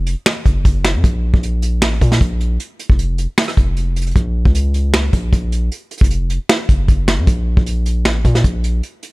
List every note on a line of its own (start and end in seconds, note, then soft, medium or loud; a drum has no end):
0.00 0.15 F1 loud
0.06 closed hi-hat medium
0.26 finger snap medium
0.26 snare loud
0.46 0.64 F#1 loud
0.46 kick medium
0.46 closed hi-hat medium
0.65 0.96 F#1 loud
0.65 kick medium
0.65 closed hi-hat medium
0.84 finger snap medium
0.84 snare medium
0.95 1.03 F#2 loud
1.04 1.33 A#1 loud
1.04 kick loud
1.04 closed hi-hat medium
1.34 1.83 A#1 loud
1.34 kick loud
1.43 closed hi-hat medium
1.62 closed hi-hat medium
1.82 2.00 A1 loud
1.82 finger snap loud
1.82 snare loud
2.01 2.20 A#2 loud
2.01 kick medium
2.01 closed hi-hat medium
2.12 snare medium
2.21 2.58 A#1 loud
2.21 kick medium
2.21 closed hi-hat medium
2.40 closed hi-hat medium
2.60 closed hi-hat medium
2.79 closed hi-hat medium
2.90 3.27 F1 loud
2.90 kick loud
2.99 closed hi-hat medium
3.18 closed hi-hat medium
3.38 finger snap loud
3.38 snare loud
3.43 closed hi-hat medium
3.48 cross-stick loud
3.48 closed hi-hat medium
3.53 closed hi-hat soft
3.57 4.13 F1 loud
3.57 kick medium
3.57 closed hi-hat medium
3.77 closed hi-hat medium
3.96 closed hi-hat medium
4.01 closed hi-hat medium
4.07 closed hi-hat medium
4.11 closed hi-hat soft
4.16 4.44 A#1 loud
4.16 kick loud
4.16 closed hi-hat medium
4.45 5.10 C#2 loud
4.45 kick loud
4.55 closed hi-hat medium
4.74 closed hi-hat medium
4.94 finger snap medium
4.94 snare loud
5.13 5.32 A#1 loud
5.13 kick medium
5.13 closed hi-hat medium
5.33 5.70 A#1 loud
5.33 kick medium
5.33 closed hi-hat medium
5.52 closed hi-hat medium
5.71 closed hi-hat medium
5.91 closed hi-hat medium
5.97 6.39 F1 loud
5.97 kick loud
5.97 closed hi-hat medium
6.04 closed hi-hat medium
6.10 closed hi-hat medium
6.30 closed hi-hat medium
6.49 finger snap medium
6.49 snare loud
6.69 6.88 F#1 loud
6.69 kick medium
6.69 closed hi-hat medium
6.88 7.20 F#1 loud
6.88 kick medium
6.88 closed hi-hat medium
7.08 finger snap medium
7.08 snare medium
7.18 7.27 F#2 loud
7.27 7.56 A#1 loud
7.27 kick loud
7.27 closed hi-hat medium
7.57 8.07 A#1 loud
7.57 kick loud
7.66 closed hi-hat medium
7.86 closed hi-hat medium
8.05 8.24 A1 loud
8.05 finger snap medium
8.05 snare loud
8.25 8.43 A#2 loud
8.25 kick medium
8.25 closed hi-hat medium
8.35 snare medium
8.44 8.82 A#1 loud
8.44 kick medium
8.44 closed hi-hat medium
8.64 closed hi-hat medium
8.83 closed hi-hat medium
9.03 closed hi-hat medium